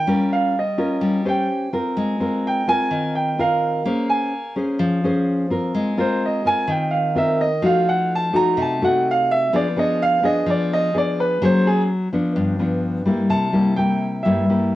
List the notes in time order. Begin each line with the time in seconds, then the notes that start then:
Already playing: G5
0.08 G3 C#4 F4 A#4
0.33 F5
0.59 D#5
0.78 C#4 F4 A#4
1.01 G3
1.25 C#4 G4 C5 G5
1.73 C4 F4 A#4
1.97 G#3
2.20 C4 F4 A#4
2.47 G5
2.67 C4 F4 A#4 G#5
2.90 D#3
3.15 G5
3.38 C4 F4 A#4 F5
3.85 A#3 C#4 G#4 C5
4.10 G#5
4.56 C#4 G#4 C5
4.79 F3
5.04 C#4 G#4 C5
5.50 C4 F4 A#4
5.75 G#3
5.97 C4 F4 A#4 C5
6.26 D#5
6.45 C4 F4 A#4 G#5
6.68 D#3 G5
6.91 F5
7.15 C4 F4 A#4 E5
7.41 D#5
7.62 F3 A3 D#4 F#4 F5
7.89 F#5
8.16 A5
8.33 A3 D#4 F#4 A#5
8.57 C3
8.62 A5
8.81 A3 D#4 F#4 F#5
9.11 F5
9.31 E5
9.53 F3 B3 D4 G#4 D5
9.77 B3 D4 G#4 D#5
10.02 F5
10.23 B3 D4 G#4 D#5
10.46 F3 D5
10.73 D#5
10.94 B3 D4 G#4
10.98 D5
11.20 B4
11.41 F#3 A#3 C#4 G#4 C5
11.67 G#4
12.13 F3 B3 D4
12.36 G2
12.59 F3 B3 D4
13.06 G3 A#3 E4
13.30 C3 A5
13.53 G3 A#3 E4
13.76 G3 A#3 E4 G5
14.23 G2 G3 A#3 E4 E5
14.49 G3 A#3 E4